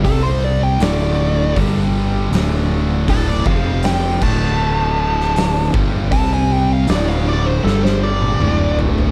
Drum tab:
CC |----------------|------x---------|----------------|
HH |o---o---o---o---|o---o-------o---|o---o-----------|
SD |----o-------o---|----o------oo---|----o---oo------|
T1 |----------------|----------------|-----------o----|
T2 |----------------|----------------|------------o---|
FT |----------------|----------------|--------------oo|
BD |o-------o-------|o-o---o-------o-|o---------------|